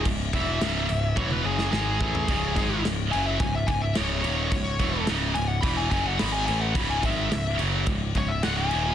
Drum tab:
CC |x-x-x-x---------|x-x-x-x-x-x-x-x-|x-x-x-x-x-x-x-x-|x-x-x-x-x-x-x-x-|
SD |----o------oo---|----o-------o---|----o-------o---|----o-------o---|
T1 |---------o------|----------------|----------------|----------------|
FT |---------------o|----------------|----------------|----------------|
BD |o-o-----o-----o-|o-o-----o-o-----|o-o-----o-o-----|o-o-----o-o-----|